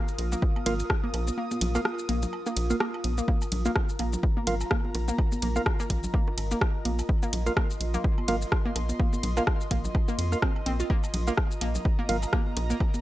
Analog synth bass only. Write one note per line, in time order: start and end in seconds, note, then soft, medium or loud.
0.18 0.35 A#1 medium
0.66 0.83 G#1 medium
1.14 1.30 A#1 loud
1.61 1.78 A#1 medium
2.09 2.26 A#1 medium
2.57 2.73 A#1 loud
3.04 3.21 A#1 medium
3.52 3.69 A#1 medium
3.99 4.16 A#1 medium
4.47 4.64 G#1 medium
4.95 5.11 A#1 loud
5.42 5.59 A#1 medium
5.90 6.07 A#1 medium
6.37 6.54 G#1 medium
6.85 7.02 A#1 loud
7.33 7.50 A#1 medium
7.80 7.97 A#1 medium
8.28 8.45 G#1 medium
8.76 8.92 A#1 loud
9.23 9.40 A#1 medium
9.71 9.88 A#1 medium
10.18 10.35 F2 loud
10.66 10.83 A#1 medium
11.14 11.30 A#1 medium
11.61 11.78 A#1 medium
12.09 12.26 G#1 medium
12.57 12.73 A#1 loud